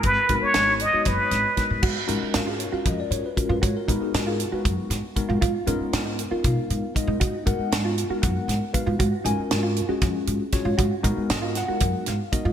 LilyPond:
<<
  \new Staff \with { instrumentName = "Muted trumpet" } { \time 7/8 \key gis \dorian \tempo 4 = 117 b'8. cis''8. dis''8 b'4 r8 | r2. r8 | r2. r8 | r2. r8 |
r2. r8 | r2. r8 | r2. r8 | }
  \new Staff \with { instrumentName = "Clean electric guitar" } { \time 7/8 \key gis \dorian r2. r8 | fis'8 dis'8 r16 eis'8 fis'8 r4 eis'16 | fis'8 dis'8 r16 eis'8 fis'8 r4 eis'16 | eis'8 cis'8 r16 dis'8 eis'8 r4 dis'16 |
fis'8 dis'8 r16 eis'8 fis'8 r4 eis'16 | fis'8 dis'8 r16 eis'8 fis'8 r4 eis'16 | fis'8 dis'8 r16 eis'8 fis'8 r4 eis'16 | }
  \new Staff \with { instrumentName = "Tine electric piano" } { \time 7/8 \key gis \dorian << { r2. r8 | r4 eis''16 gis'16 cis''16 eis''16 dis''16 d''16 cis''16 b'16 r16 b'16 | cis''16 ais'16 b'16 gis'16 eis'16 gis'16 fis'16 b'16 r4. | r2 eis''4 dis''8~ |
dis''8 fis''8 r4 fis''4 eis''8~ | eis''8 gis''8 r2 r8 | r4 dis''8 fis''4 eis''8 dis''8 | } \\ { r8 <gis b dis' fis' ais'>4 r16 <gis b dis' fis' cis''>4 r16 <gis b dis' fis' ais'>8 | r8 <gis cis' eis' fis' ais'>4 r16 <gis cis' eis' fis' ais'>4 r16 <gis cis' eis' fis' ais'>8 | r8 <gis b dis' fis' ais'>4 r16 <gis b dis' fis' ais'>4 r16 <gis b dis' fis' ais'>8 | r8 <gis b dis' eis' ais'>4 r16 <gis b dis' eis' ais'>4 r16 <gis b dis' eis' ais'>8 |
r8 <gis b dis' fis' ais'>4 r16 <gis b dis' fis' ais'>4 r16 <gis b dis' fis' b'>8 | r8 <gis cis' eis' fis' ais'>4 r16 <gis cis' eis' fis' gis'>4 r16 <gis cis' eis' fis' cis''>8 | r8 <gis b dis' fis' ais'>4 r16 <gis b dis' fis' ais'>4 r16 <gis b dis' fis' ais'>8 | } >> }
  \new Staff \with { instrumentName = "Upright bass" } { \clef bass \time 7/8 \key gis \dorian gis,,16 r16 gis,,16 r16 gis,,8. r16 fis,,16 r16 gis,,16 r8 gis,16 | gis,16 r16 gis,16 r16 gis,8. r16 eis,16 r16 gis,16 r8 gis,16 | gis,16 r16 gis,16 r16 gis,8. r16 fis,16 r16 gis,16 r8 gis,16 | gis,16 r16 gis,16 r16 gis,8. r16 b,16 r16 gis,16 r8 gis,16 |
gis,16 r16 gis,16 r16 gis,8. r16 fis,16 r16 gis,16 r8 gis,16 | gis,16 r16 gis,16 r16 gis,8. r16 eis,16 r16 gis,16 r8 gis,16 | gis,16 r16 gis,16 r16 gis,8. r16 fis,16 r16 gis,16 r8 gis,16 | }
  \new DrumStaff \with { instrumentName = "Drums" } \drummode { \time 7/8 <hh bd>8 <hh bd>8 <hh sn>8 hh8 <hh bd sn>8 <hh sn>8 <hh bd sn>8 | <cymc bd>8 hh8 <hh sn>8 hh8 <hh bd>8 hh8 <hh bd>8 | <hh bd>8 <hh bd>8 <hh sn>8 hh8 <hh bd>8 <hh sn>8 <hh bd>8 | <hh bd>8 hh8 <hh sn>8 hh8 <hh bd>8 hh8 <hh bd>8 |
<hh bd>8 <hh bd>8 <hh sn>8 hh8 <hh bd>8 <hh sn>8 <hh bd>8 | <hh bd>8 hh8 <hh sn>8 hh8 <hh bd sn>8 hh8 <hh bd sn>8 | <hh bd>8 <hh bd>8 <hh sn>8 <hh sn>8 <hh bd>8 <hh sn>8 <hh bd>8 | }
>>